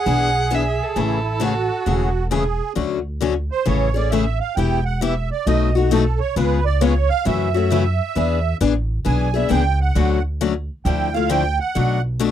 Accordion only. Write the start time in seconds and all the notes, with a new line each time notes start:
Already playing: G#4
0.96 E4
1.42 F#4
2.31 G#4
3.52 C5
3.67 C#5
3.96 D5
4.11 E5
4.40 F5
4.56 G5
4.85 F#5
5.02 E5
5.32 D5
5.46 D#5
5.76 F#4
5.91 A4
6.20 C#5
6.37 B4
6.65 D5
6.81 C#5
7.09 F5
7.27 E5
9.06 G#5
9.35 E5
9.51 G5
9.81 F#5
10.86 G5
11.14 F5
11.30 G5
11.60 F#5